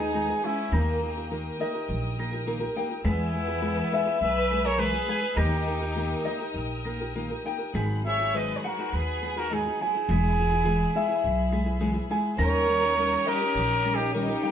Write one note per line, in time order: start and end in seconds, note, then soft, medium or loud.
0.00 0.31 D#2 medium
0.00 0.12 G#3 soft
0.00 0.13 B3 soft
0.00 0.40 D#4 medium
0.00 0.13 D#4 soft
0.00 0.46 G#4 medium
0.00 0.13 G#4 soft
0.00 0.71 B4 medium
0.00 1.04 D#5 medium
0.00 0.70 G#5 medium
0.00 0.70 D#6 medium
0.00 0.78 B6 medium
0.13 0.29 G#2 medium
0.13 0.29 D#3 medium
0.13 0.29 G#3 medium
0.13 0.29 B3 medium
0.13 0.28 D#4 medium
0.13 0.28 G#4 medium
0.30 0.42 G#3 soft
0.30 0.43 B3 soft
0.30 0.43 D#4 soft
0.30 0.44 G#4 medium
0.43 0.71 G#3 medium
0.43 0.72 B3 medium
0.43 0.73 C#4 medium
0.43 0.71 D#4 medium
0.43 0.76 E4 medium
0.43 0.73 G#4 medium
0.43 1.94 G#5 medium
0.72 1.48 D#2 medium
0.72 1.02 D#3 medium
0.72 1.01 A#3 medium
0.72 1.31 A#3 medium
0.72 1.01 D#4 medium
0.72 1.32 D#4 medium
0.72 1.02 G4 medium
0.72 3.03 A#4 medium
0.72 1.02 A#4 medium
0.72 3.03 G5 medium
0.72 3.03 D#6 medium
0.72 1.77 A#6 medium
1.02 1.16 A#3 soft
1.02 1.17 D#4 medium
1.02 1.16 G4 medium
1.02 1.15 A#4 medium
1.16 1.30 D#4 soft
1.16 1.30 G4 soft
1.16 1.30 A#4 soft
1.31 1.61 D#3 medium
1.31 1.58 A#3 medium
1.31 1.59 D#4 medium
1.31 1.59 G4 medium
1.31 1.59 A#4 medium
1.59 1.74 A#3 medium
1.59 1.75 D#4 medium
1.59 1.74 G4 medium
1.59 1.73 A#4 medium
1.59 3.39 D#5 medium
1.74 2.18 D#4 medium
1.74 2.18 G4 medium
1.74 2.18 A#4 medium
1.89 2.64 A#1 medium
2.18 2.33 A#3 medium
2.18 2.33 D#4 medium
2.18 2.32 G4 medium
2.18 2.31 A#4 medium
2.18 3.11 A#6 medium
2.32 2.46 D#4 soft
2.32 2.46 G4 soft
2.32 2.46 A#4 medium
2.46 2.62 D#3 medium
2.46 2.62 A#3 medium
2.46 2.60 D#4 loud
2.46 2.59 G4 medium
2.46 2.59 A#4 loud
2.60 2.76 D#4 soft
2.60 2.76 G4 medium
2.60 2.76 A#4 medium
2.76 2.91 A#3 medium
2.76 2.90 D#4 medium
2.76 2.90 G4 medium
2.76 2.88 A#4 medium
2.76 4.32 G5 medium
2.90 3.04 D#4 soft
2.90 3.04 G4 soft
2.90 3.04 A#4 medium
3.04 3.80 E2 loud
3.04 3.34 E3 medium
3.04 3.32 G#3 medium
3.04 3.33 B3 medium
3.04 4.18 B3 medium
3.04 3.34 G#4 loud
3.04 5.34 B4 medium
3.04 3.34 B4 medium
3.04 5.35 G#5 medium
3.04 5.34 E6 medium
3.04 4.10 B6 loud
3.09 4.19 E4 medium
3.33 3.48 G#3 medium
3.33 3.48 B3 medium
3.33 3.47 G#4 medium
3.33 3.46 B4 medium
3.47 3.61 B3 soft
3.47 3.61 G#4 medium
3.47 3.61 B4 soft
3.61 3.92 E3 medium
3.61 3.90 G#3 medium
3.61 3.90 B3 medium
3.61 3.91 G#4 medium
3.61 3.92 B4 medium
3.91 4.06 G#3 medium
3.91 4.06 B3 medium
3.91 4.05 G#4 medium
3.91 4.04 B4 loud
3.91 5.66 E5 medium
4.06 4.50 B3 soft
4.06 4.51 G#4 medium
4.06 4.50 B4 medium
4.21 4.96 B1 medium
4.21 4.63 B4 loud
4.21 4.67 E5 medium
4.51 4.65 G#3 medium
4.51 4.65 B3 medium
4.51 4.64 G#4 medium
4.51 4.64 B4 medium
4.51 5.43 B6 medium
4.65 4.77 B3 soft
4.65 4.77 G#4 soft
4.65 4.80 A#4 medium
4.65 4.80 C#5 loud
4.77 4.93 E3 medium
4.77 4.93 G#3 medium
4.77 4.93 B3 medium
4.77 4.93 G#4 medium
4.77 4.91 B4 loud
4.77 5.39 B4 loud
4.81 5.38 G#4 medium
4.92 5.06 B3 soft
4.92 5.07 G#4 medium
4.92 5.07 B4 medium
5.07 5.22 G#3 medium
5.07 5.22 B3 medium
5.07 5.22 G#4 medium
5.07 5.21 B4 medium
5.07 6.59 G#5 medium
5.22 5.37 B3 soft
5.22 5.37 G#4 soft
5.22 5.37 B4 soft
5.36 6.13 D#2 loud
5.36 5.67 D#3 medium
5.36 5.64 A#3 medium
5.36 5.65 D#4 medium
5.36 6.55 D#4 medium
5.36 5.66 G4 loud
5.36 6.55 G4 medium
5.36 5.66 A#4 medium
5.36 7.73 A#4 medium
5.36 7.73 G5 medium
5.36 7.72 D#6 medium
5.36 6.42 A#6 medium
5.65 5.81 A#3 medium
5.65 5.81 D#4 medium
5.65 5.80 G4 medium
5.65 5.80 A#4 medium
5.81 5.95 D#4 soft
5.81 5.95 G4 medium
5.81 5.95 A#4 soft
5.96 6.26 D#3 medium
5.96 6.24 A#3 medium
5.96 6.25 D#4 medium
5.96 6.25 G4 medium
5.96 6.26 A#4 medium
6.25 6.40 A#3 medium
6.25 6.40 D#4 medium
6.25 6.41 G4 medium
6.25 6.40 A#4 medium
6.25 8.03 D#5 medium
6.41 6.85 D#4 medium
6.41 6.85 G4 medium
6.41 6.85 A#4 medium
6.54 7.32 A#1 medium
6.85 7.00 A#3 medium
6.85 7.00 D#4 medium
6.85 7.00 G4 medium
6.85 6.99 A#4 medium
6.85 7.81 A#6 medium
7.01 7.14 D#4 soft
7.01 7.15 G4 medium
7.01 7.14 A#4 medium
7.15 7.30 D#3 medium
7.15 7.30 A#3 medium
7.15 7.31 D#4 loud
7.15 7.31 G4 medium
7.15 7.30 A#4 medium
7.31 7.44 D#4 soft
7.31 7.45 G4 soft
7.31 7.46 A#4 medium
7.45 7.60 A#3 medium
7.45 7.60 D#4 medium
7.45 7.59 G4 medium
7.45 7.57 A#4 medium
7.45 8.70 G5 medium
7.59 7.74 D#4 soft
7.59 7.74 G4 soft
7.59 7.74 A#4 medium
7.74 8.51 G#1 loud
7.74 8.05 G#2 medium
7.74 8.05 D#3 medium
7.74 8.03 F#3 medium
7.74 8.03 B3 medium
7.74 8.04 D#4 loud
7.74 10.07 G#4 medium
7.74 8.04 G#4 loud
7.74 10.07 F#5 soft
7.74 10.06 B5 medium
7.74 8.80 B6 medium
8.04 8.19 F#3 medium
8.04 8.19 B3 medium
8.04 8.19 D#4 medium
8.04 8.18 G#4 medium
8.04 8.33 C#5 medium
8.04 8.38 E5 loud
8.19 8.33 F#3 soft
8.19 8.32 B3 soft
8.19 8.33 D#4 soft
8.19 8.33 G#4 soft
8.34 8.64 G#2 medium
8.34 8.65 D#3 medium
8.34 8.64 F#3 medium
8.34 8.64 B3 medium
8.34 8.65 D#4 medium
8.34 8.65 G#4 medium
8.34 8.58 B4 medium
8.34 8.59 D#5 medium
8.57 8.65 G#4 medium
8.57 8.69 B4 medium
8.64 8.79 F#3 medium
8.64 8.79 B3 medium
8.64 8.77 D#4 medium
8.64 8.93 F#4 medium
8.64 8.78 G#4 medium
8.64 8.96 A#4 medium
8.64 10.25 F#5 medium
8.79 9.20 F#3 soft
8.79 9.21 B3 soft
8.79 9.22 D#4 soft
8.79 9.22 G#4 medium
8.93 9.68 D#2 medium
8.93 9.38 G#4 medium
8.93 9.39 B4 medium
9.22 9.36 F#3 medium
9.22 9.37 B3 medium
9.22 9.36 D#4 medium
9.22 9.35 G#4 medium
9.22 10.09 B6 medium
9.36 9.49 F#3 soft
9.36 9.50 B3 soft
9.36 9.50 D#4 medium
9.36 9.52 F#4 medium
9.36 9.51 G#4 medium
9.36 9.55 A#4 medium
9.51 9.66 G#2 medium
9.51 9.66 D#3 medium
9.51 9.66 F#3 medium
9.51 9.66 B3 medium
9.51 9.81 D#4 medium
9.51 9.66 D#4 medium
9.51 9.65 G#4 medium
9.51 9.82 G#4 medium
9.66 9.79 F#3 soft
9.66 9.80 B3 medium
9.66 9.80 D#4 soft
9.66 9.81 G#4 medium
9.81 9.95 F#3 medium
9.81 9.95 B3 medium
9.81 9.95 D#4 medium
9.81 11.50 E4 medium
9.81 9.94 G#4 medium
9.81 11.50 G#4 medium
9.81 11.31 G#5 medium
9.95 10.10 F#3 soft
9.95 10.10 B3 soft
9.95 10.09 D#4 medium
9.95 10.09 G#4 soft
10.07 10.83 E1 loud
10.07 10.39 E3 medium
10.07 10.37 G#3 medium
10.07 10.38 B3 medium
10.07 10.38 E4 medium
10.07 12.37 G#4 medium
10.07 10.39 G#4 medium
10.07 12.36 E5 medium
10.07 12.36 B5 medium
10.07 11.15 B6 medium
10.38 10.52 G#3 medium
10.38 10.52 B3 medium
10.38 10.51 E4 medium
10.38 10.50 G#4 medium
10.51 10.63 B3 soft
10.51 10.64 E4 soft
10.51 10.64 G#4 medium
10.64 10.95 E3 medium
10.64 10.93 G#3 medium
10.64 10.93 B3 medium
10.64 10.94 E4 medium
10.64 10.95 G#4 loud
10.94 11.09 G#3 medium
10.94 11.09 B3 medium
10.94 11.08 E4 medium
10.94 11.07 G#4 medium
10.94 12.68 E5 medium
11.08 11.51 B3 medium
11.08 11.51 E4 medium
11.08 11.52 G#4 medium
11.24 11.99 B1 medium
11.51 11.66 G#3 medium
11.51 11.66 B3 medium
11.51 11.65 E4 medium
11.51 11.65 G#4 medium
11.51 12.44 B6 medium
11.66 11.79 B3 medium
11.66 11.80 E4 medium
11.66 11.80 G#4 medium
11.80 11.95 E3 medium
11.80 11.96 G#3 loud
11.80 11.95 B3 loud
11.80 11.94 E4 loud
11.80 11.93 G#4 loud
11.94 12.10 B3 soft
11.94 12.10 E4 medium
11.94 12.10 G#4 medium
12.10 12.38 G#3 medium
12.10 12.38 B3 medium
12.10 12.38 E4 medium
12.10 12.39 G#4 medium
12.10 13.61 G#5 medium
12.37 13.14 D#2 loud
12.37 12.68 D#3 loud
12.37 12.67 G3 medium
12.37 12.68 C#4 medium
12.37 12.68 D#4 medium
12.37 13.23 A#4 loud
12.37 12.69 A#4 medium
12.37 13.30 C#5 loud
12.37 14.51 C#5 medium
12.37 14.51 G5 medium
12.37 14.51 D#6 medium
12.37 13.43 A#6 loud
12.68 12.83 G3 medium
12.68 12.83 C#4 medium
12.68 12.83 D#4 medium
12.68 12.82 A#4 medium
12.83 12.96 C#4 soft
12.83 12.96 D#4 soft
12.83 12.97 A#4 medium
12.96 13.27 D#3 medium
12.96 13.25 G3 medium
12.96 13.25 C#4 medium
12.96 13.27 D#4 medium
12.96 13.26 A#4 medium
13.26 13.41 G3 medium
13.26 13.41 C#4 medium
13.26 13.40 D#4 medium
13.26 13.94 G4 medium
13.26 13.39 A#4 medium
13.26 13.96 A#4 loud
13.26 14.51 D#5 medium
13.41 13.83 C#4 medium
13.41 13.84 D#4 medium
13.41 13.85 A#4 medium
13.55 14.31 A#1 medium
13.84 13.99 G3 medium
13.84 13.99 C#4 medium
13.84 13.98 D#4 medium
13.84 13.97 A#4 medium
13.84 14.51 A#6 medium
13.95 14.14 D#4 medium
13.95 14.14 G4 medium
13.95 14.13 A#4 medium
13.99 14.13 C#4 soft
13.99 14.14 D#4 medium
14.14 14.29 D#3 medium
14.14 14.29 G3 medium
14.14 14.29 C#4 medium
14.14 14.28 D#4 loud
14.14 14.51 D#4 medium
14.14 14.51 G4 medium
14.14 14.28 A#4 loud
14.29 14.43 C#4 medium
14.29 14.43 D#4 medium
14.29 14.44 A#4 medium
14.43 14.51 G3 medium
14.43 14.51 C#4 medium
14.43 14.51 D#4 medium
14.43 14.51 A#4 medium
14.43 14.51 G5 medium